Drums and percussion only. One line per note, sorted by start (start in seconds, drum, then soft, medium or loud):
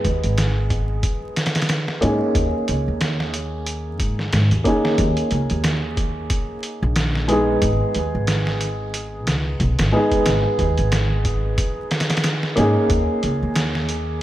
0.04 kick medium
0.04 closed hi-hat medium
0.24 closed hi-hat soft
0.38 snare loud
0.38 closed hi-hat medium
0.70 kick medium
0.70 closed hi-hat medium
1.03 kick loud
1.03 closed hi-hat medium
1.36 snare medium
1.36 closed hi-hat medium
1.46 snare medium
1.46 closed hi-hat medium
1.55 snare medium
1.55 closed hi-hat medium
1.62 snare medium
1.62 closed hi-hat medium
1.69 snare loud
1.69 closed hi-hat medium
1.88 snare soft
2.02 closed hi-hat medium
2.35 kick loud
2.35 closed hi-hat medium
2.68 closed hi-hat medium
3.01 snare loud
3.01 closed hi-hat medium
3.20 snare medium
3.34 closed hi-hat medium
3.66 closed hi-hat medium
4.00 kick medium
4.00 closed hi-hat medium
4.19 snare soft
4.33 snare loud
4.33 closed hi-hat medium
4.51 closed hi-hat soft
4.65 kick medium
4.65 closed hi-hat medium
4.85 snare medium
4.98 kick loud
4.98 closed hi-hat medium
5.17 closed hi-hat soft
5.31 closed hi-hat medium
5.50 closed hi-hat soft
5.64 snare loud
5.64 closed hi-hat medium
5.97 kick medium
5.97 closed hi-hat medium
6.30 kick loud
6.30 closed hi-hat medium
6.63 closed hi-hat medium
6.96 snare loud
6.96 closed hi-hat medium
7.15 snare soft
7.29 closed hi-hat medium
7.62 kick loud
7.62 closed hi-hat medium
7.94 closed hi-hat medium
8.27 snare loud
8.27 closed hi-hat medium
8.47 snare medium
8.61 closed hi-hat medium
8.94 closed hi-hat medium
9.27 snare medium
9.27 closed hi-hat medium
9.60 kick medium
9.60 closed hi-hat medium
9.79 snare loud
9.79 closed hi-hat medium
10.12 kick medium
10.12 closed hi-hat medium
10.26 snare medium
10.26 closed hi-hat medium
10.59 kick medium
10.59 closed hi-hat medium
10.78 closed hi-hat soft
10.92 snare loud
10.92 closed hi-hat medium
11.25 kick medium
11.25 closed hi-hat medium
11.58 kick loud
11.58 closed hi-hat medium
11.91 snare medium
11.91 closed hi-hat medium
12.00 snare medium
12.00 closed hi-hat medium
12.10 snare medium
12.10 closed hi-hat medium
12.17 snare medium
12.17 closed hi-hat medium
12.24 snare loud
12.24 closed hi-hat medium
12.43 snare soft
12.57 closed hi-hat medium
12.90 kick loud
12.90 closed hi-hat medium
13.23 closed hi-hat medium
13.55 snare loud
13.55 closed hi-hat medium
13.75 snare soft
13.89 closed hi-hat medium